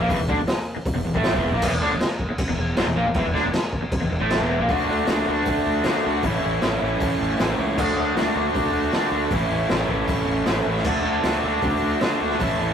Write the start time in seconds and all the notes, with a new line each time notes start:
0.00 A#1
0.08 E1 E2 E3, kick, open hi-hat
0.18 E1 E2
0.28 D2 D3 D4, kick
0.38 E1 E2
0.47 muted fingered electric bass stroke, muted overdriven electric guitar stroke, snare, open hi-hat
0.76 muted fingered electric bass stroke, muted overdriven electric guitar stroke
0.86 kick, open hi-hat
0.95 E1 E2
1.05 E1 E2
1.14 A1 A2 A3, kick
1.23 snare, open hi-hat
1.33 E1 E2 E3, kick
1.52 A#1 A#2 A#3
1.62 E1 E2 E3, kick, crash
1.70 E1 E2
1.80 D2 D3 D4
1.90 E1 E2
1.99 muted fingered electric bass stroke, muted overdriven electric guitar stroke, snare, crash
2.19 kick
2.29 muted fingered electric bass stroke, muted overdriven electric guitar stroke
2.38 kick, crash
2.48 E1 E2
2.57 E1 E2
2.77 E1 E2 E3, snare, crash
2.85 E1 E2
2.95 A#1 A#2 A#3
3.05 E1 E2
3.14 E1 E2 E3, kick, crash
3.26 E1 E2
3.34 D2 D3 D4, snare
3.43 E1 E2
3.53 muted overdriven electric guitar stroke, muted fingered electric bass stroke, snare, crash
3.73 kick
3.83 muted overdriven electric guitar stroke, muted fingered electric bass stroke
3.92 kick, crash
4.02 E1 E2
4.11 E1 E2
4.21 A1 A2 A3
4.30 snare, crash
4.40 E1 E2 E3
4.59 A#1 A#2 A#3
4.68 D2 D3 A3 D4, kick, open hi-hat
4.72 F#4
4.88 D2 A3 D4 F#4
5.07 D2 D3 A3 D4 F#4, snare, open hi-hat
5.27 D2 A3 D4 F#4
5.45 D2, kick, open hi-hat
5.67 D2
5.83 D3 A3 D4, snare, open hi-hat
5.88 F#4
6.03 D2 D4 F#4
6.08 A3
6.22 A1 A2 E3 A3 C#4, kick, open hi-hat
6.27 E4
6.41 A1 C#4 E4
6.45 A3
6.61 A1 E3 A3 C#4 E4, snare, open hi-hat
6.80 A1 A3 C#4 E4
7.00 A1, kick, open hi-hat
7.21 A1
7.38 A1 A2 E3 A3 C#4 E4, snare, open hi-hat
7.58 C#2 A3 C#4 E4
7.76 D2 D3 A3 D4 F#4, kick, crash
7.96 D2 D4 F#4
8.00 A3
8.15 D2 D3 A3 D4, snare, open hi-hat
8.20 F#4
8.35 D2 A3 D4 F#4
8.55 D2, kick, open hi-hat
8.73 D2
8.92 D3 A3 D4, snare, open hi-hat
8.97 F#4
9.12 D2 D4 F#4
9.16 A3
9.31 A1 A2 E3 A3 C#4 E4, kick, open hi-hat
9.50 A1 C#4 E4
9.54 A3
9.69 A1 E3 A3 C#4 E4, snare, open hi-hat
9.88 A1 A3 C#4 E4, kick
10.08 A1, kick, open hi-hat
10.27 A1
10.46 A1 A2 E3 A3 C#4 E4, snare, open hi-hat
10.66 A1 A3 C#4 E4
10.76 snare
10.84 D2 D3 A3 D4 F#4, kick, crash
10.88 A4
11.04 D2 D4 F#4 A4
11.23 D2 A3 D4 F#4, snare, open hi-hat
11.27 A4
11.44 D2 D4 F#4 A4
11.62 D2, kick, open hi-hat
11.82 D2
12.01 D3 A3 D4 F#4 A4, snare, open hi-hat
12.19 D2 D4 F#4 A4
12.29 snare
12.39 A1 A2 E3 A3 C#4 E4 A4, kick, open hi-hat
12.58 A1 A3 C#4 E4 A4